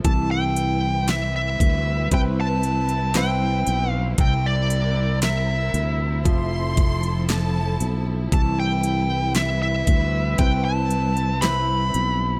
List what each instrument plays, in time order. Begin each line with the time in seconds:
0.04 fretless electric bass C2, grand piano E3, string section G3 C4 E4 B4, lead electric guitar A5, kick, closed hi-hat
0.31 lead electric guitar G5
0.56 closed hi-hat
1.08 lead electric guitar E5, snare, closed hi-hat
1.36 lead electric guitar E5
1.60 fretless electric bass D2, kick, closed hi-hat
2.11 fretless electric bass C2, grand piano C4 E4 B4, lead electric guitar G5, kick, closed hi-hat
2.41 lead electric guitar A5
2.63 closed hi-hat
2.89 closed hi-hat
3.14 grand piano C4 E4 B4, lead electric guitar G5, snare, closed hi-hat
3.67 fretless electric bass B1, closed hi-hat
3.91 lead electric guitar F5
4.18 fretless electric bass C2, grand piano C3, string section A#4, lead electric guitar G5, kick, closed hi-hat
4.46 lead electric guitar D5
4.70 closed hi-hat
5.22 lead electric guitar E5, snare, closed hi-hat
5.74 fretless electric bass D2, closed hi-hat
6.24 fretless electric bass F1, grand piano F3, string section F3 A4, violin section C6, kick, closed hi-hat
6.77 kick, closed hi-hat
7.03 closed hi-hat
7.28 violin section A5, snare, closed hi-hat
7.80 fretless electric bass B1, closed hi-hat
8.32 fretless electric bass C2, grand piano E3, string section G3 C4 B4, lead electric guitar A5, kick, closed hi-hat
8.60 lead electric guitar G5
8.83 closed hi-hat
9.35 lead electric guitar E5, snare, closed hi-hat
9.62 lead electric guitar E5
9.87 fretless electric bass D2, kick, closed hi-hat
10.38 fretless electric bass C2, grand piano C4 E4 B4, lead electric guitar G5, kick, closed hi-hat
10.65 lead electric guitar A5
10.90 closed hi-hat
11.17 closed hi-hat
11.41 grand piano C4 E4 B4, lead electric guitar B5, snare, closed hi-hat
11.94 fretless electric bass B1, closed hi-hat